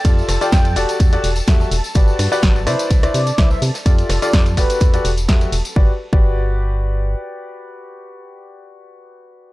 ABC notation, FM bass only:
X:1
M:4/4
L:1/16
Q:"Swing 16ths" 1/4=126
K:G
V:1 name="FM bass" clef=bass
=F,, z =F,,, z F,,2 E,,, z E,, z E,,, z E,, z E,,, z | G,,, z G,, z G,,,2 C, z C,, z C, z C,, z C, z | =F,, z =F,,, z F,,2 E,,, z E,, z E,,,2 E,, z E,,, z | G,,, z2 G,,,8- G,,, z4 |
z16 |]